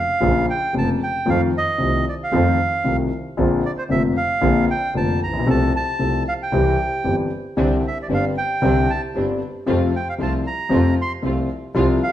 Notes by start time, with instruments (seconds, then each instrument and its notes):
Already playing: bandoneon F5
0.20 grand piano A#1 A#2 C#3 F3 A#3 F4, double bass A#1
0.50 bandoneon G5
0.73 grand piano F1 F2 C#3 F3 A#3 F4, double bass F1
0.78 bandoneon A5
1.03 bandoneon G5
1.26 grand piano F2 D#3 F3 A3 C4 F4, double bass F2
1.30 bandoneon F5
1.57 bandoneon D#5
1.78 grand piano C2 C3 D#3 A3 C4 F4
1.83 double bass C2
2.09 bandoneon D5
2.24 bandoneon F5
2.32 double bass F2, grand piano F2 D#3 F3 A3 C4 F4
2.84 double bass C2, grand piano C2 C3 D#3 A3 C4 F4
3.37 grand piano A#1 A#2 D3 A#3 C4 F4, double bass A#1
3.66 bandoneon D5
3.78 bandoneon C5
3.89 grand piano F1 F2 D3 A#3 C4 F4, double bass F1, bandoneon E5
4.17 bandoneon F5
4.41 grand piano A#1 A#2 D3 A#3 C4 F4, double bass A#1
4.71 bandoneon G5
4.94 grand piano F1 F2 D3 A#3 C4 F4, double bass F1, bandoneon A5
5.22 double bass A#1, bandoneon A#5
5.26 grand piano A1
5.33 grand piano A#1
5.39 grand piano B1
5.46 double bass C2, grand piano C2 C3 F3 A3 C4 A4
5.50 bandoneon A5
5.76 bandoneon A5
5.99 grand piano C2 C3 F3 A3 C4 A4, double bass C2
6.29 bandoneon F5
6.43 bandoneon G5
6.52 grand piano C2 C3 E3 G3 C4 G4, double bass C2
7.04 double bass G1, grand piano G1 G2 E3 G3 C4 G4
7.57 grand piano C2 C3 D3 G3 C4 G4, double bass C2, string section G3 C4 D4
7.88 bandoneon E5
8.02 bandoneon D5
8.09 grand piano G1 G2 D3 G3 C4 G4, double bass G1, string section G3 C4 D4
8.14 bandoneon F5
8.38 bandoneon G5
8.62 grand piano C2 C3 D3 G3 C4 G4, double bass C2, string section G3 C4 D4
8.90 bandoneon A5
9.15 double bass G1, grand piano G1 G2 D3 G3 C4 G4, string section G3 C4 D4
9.66 grand piano F2 C3 F3 A3 F4, double bass F2, string section A3 C4 F4
9.96 bandoneon G5
10.09 bandoneon F5
10.18 grand piano C2 C3 F3 A3 F4, double bass C2, string section A3 C4 F4, bandoneon A5
10.47 bandoneon A#5
10.69 grand piano F2 C3 F3 A3 F4, double bass F2, string section A3 C4 F4
11.02 bandoneon C6
11.22 grand piano C2 C3 F3 A3 F4, double bass C2, string section A3 C4 F4
11.74 grand piano C2 C3 F3 G3 F4, double bass C2, string section G3 C4 F4
12.03 bandoneon F5